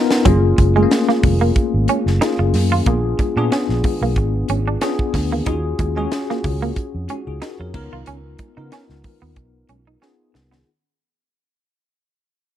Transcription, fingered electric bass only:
0.25 F#1
0.58 F#1
1.24 F1
1.74 G#1
2.06 F#1
2.39 F#1
2.54 F#2
2.86 A#1
3.36 A#2
3.69 A#1
4.01 B1
4.16 G#1
4.49 G#1
5.14 D2
5.46 D#2
5.79 D#2
6.44 C#2
6.94 F2
7.27 C#2
7.60 F2
7.74 C#2
7.93 C2
8.08 C#2
8.57 C#3
8.89 C#2
9.22 D#2
9.36 B1
9.69 B1
10.35 C2

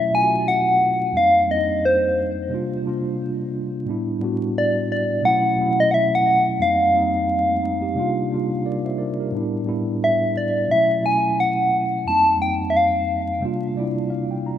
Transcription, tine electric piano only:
Already playing: B2 F#3 A3 C#4 E4
0.11 B2 F#3 A3 C#4
0.16 F4
0.23 F#4
1.12 F2 G3 A#3 C4
1.17 D#4
1.46 F2 G3 A#3 C4
1.51 D4
1.57 D#4
2.49 C3 G3 A#3 D4
2.54 F4
2.82 C3 G3 A#3 D4
2.87 F4
3.85 A2 G3 B3 D4
3.90 E4
4.20 A2 G3 B3 D4
4.24 F#4
5.21 B2 F#3 A3 C#4
5.26 E4
5.57 B2 F#3 A3 C#4
5.61 E4
6.59 F2 G3 A#3 C4
6.63 D#4
6.92 F2 G3 A#3 C4
6.97 D#4
7.49 A3 C4
7.63 C4 D#4
7.82 D#4 G4
7.95 C3 G3 A#3 D4
8.00 F4
8.28 C3 G3 A#3 D4
8.34 F4
8.66 A#4 D5
8.85 C5 E5
8.98 A#4 D5
9.20 G4 A#4
9.31 A2 G3 B3 D4
9.37 E4
9.64 A2 G3 B3 D4
9.69 E4
10.67 B2 F#3 A3 C#4
10.72 E4
11.01 B2 F#3 A3 C#4
11.06 E4
12.05 F2 G3 A#3 C4
12.10 D#4
12.37 F2 G3 A#3
12.41 C4 D#4
13.40 C3 G3 A#3 D4
13.45 F4
13.75 C3 G3 A#3 D4 D5
13.80 E4
14.10 F5
14.31 G5
14.46 A#5

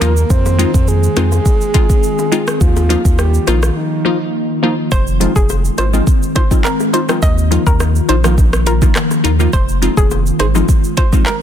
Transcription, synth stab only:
0.01 F3 A#3 D#4 F4
0.59 G#3 C4 D#4 F4
1.16 G#3 C4 D#4 F4
1.74 G#3 C4 D#4 F4
2.32 G#3 C4 D#4 F4
2.89 F3 A#3 D#4 F4
3.47 F3 A#3 D#4 F4
4.05 F3 A#3 D#4 F4
4.62 F3 A#3 D#4 F4
5.20 F3 G#3 C4 D#4 F4
5.78 D#4 F4
5.93 F3 G#3 C4 D#4 F4
6.36 D#4 F4
6.51 F3 G#3 C4 D#4 F4
6.93 D#4 F4
7.08 F3 G#3 C4 D#4 F4
7.51 D#3 F3 A#3 D#4 F4
8.09 D#4 F4
8.24 D#3 F3 A#3 D#4 F4
8.66 D#4 F4
8.82 D#3 F3 A#3 D#4 F4
9.24 D#4 F4
9.39 D#3 F3 A#3 D#4 F4
9.82 F3 G#3 C4 D#4 F4
10.39 D#4 G#4
10.55 F3 G#3 C4 D#4 F4
10.97 D#4 F4
11.12 F3 G#3 C4 D#4 F4

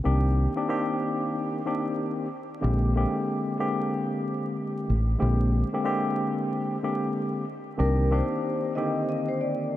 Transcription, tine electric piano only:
0.04 D#3 A#3 C4 D4 G4
0.56 D#3 A#3 C4 D4 G4
0.68 D#3 A#3 C4 D4 G4
1.65 D#3 A#3 C4 D4 G4
2.61 D3 G#3 A#3 C4 G4
2.96 D3 G#3 A#3 C4 G4
3.59 D3 G#3 A#3 C4 G4
5.18 D3 G#3 A#3 C4 G4
5.73 D3 G#3 A#3 C4 G4
5.84 D3 G#3 A#3 C4 G4
6.83 D3 G#3 A#3 C4 G4
7.77 D#3 A#3 C4 D4 G4
8.11 D#3 A#3 C4 D4 G4
8.76 D3 D#3 A#3 C4 G4

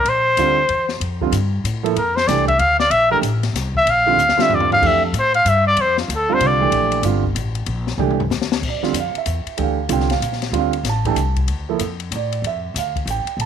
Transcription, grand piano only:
0.38 D3 G3 C4 F4
1.21 D3 G3 C4 F4
1.83 F3 A#3 E4 A4
2.28 E3 A3 D4 G4
3.10 E3 A3 D4 G4
4.06 D3 G3 C4 F4
4.37 D3 G3 C4 F4
4.82 E3 A3 D4 G4
6.29 D3 G3 C4 F4
6.60 E3 A3 D4 G4
7.04 D3 G3 C4 F4
7.98 E3 A3 D4 G4
8.69 D5
8.83 D3 G3 C4 F4
9.00 F5
9.18 E5
9.57 E3 A3 D4 G4
9.62 F5
9.89 D3 G3 C4 F4 G5
10.11 F5
10.53 D3 G3 C4 F4
10.58 F5
10.89 A5
11.06 E3 A3 D4 G4 A5
11.69 F3 A#3 E4 A4
12.16 D5
12.47 E5
12.78 F5
13.10 G5
13.41 A5

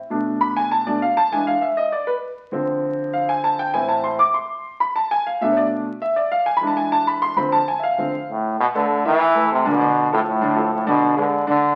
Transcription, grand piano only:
0.10 B2 A3 D4
0.41 B5
0.56 G#5
0.71 A5
0.86 B2 A3 D4 D5
1.02 F5
1.17 A5
1.32 E3 G#3 D4 G#5
1.47 F5
1.61 E5
1.77 D#5
1.92 D5
2.07 B4
2.52 D3 F3 C4
3.13 F5
3.29 G#5
3.44 A5
3.59 G5
3.74 A2 E3 C4 G#5
3.88 A5
4.04 C6
4.19 D6
4.34 C6
4.80 B5
4.96 A5
5.11 G#5
5.27 F5
5.41 B2 A3 D4 E5
5.52 C#5
5.57 D5
6.02 E5
6.16 D5
6.32 F5
6.46 G#5
6.57 B5
6.61 E3 G#3 D4
6.67 A5
6.77 G#5
6.92 A5
7.07 B5
7.22 C6
7.36 D3 F3 C4 B5
7.52 A5
7.68 G#5
7.79 E5
7.83 F5
7.98 D3 F3 C4
8.74 A3 A4 B4
9.05 E3 E4 E5
9.35 A3 A4 B4
9.65 D3 D4 D5
9.80 D3 D4 D5
10.12 F3 F4 A4
10.41 D3 D4 D5
10.56 F3 F4 A4
10.86 D3 D4 D5
11.17 G#3 G#4 B4
11.47 D3 D4 D5

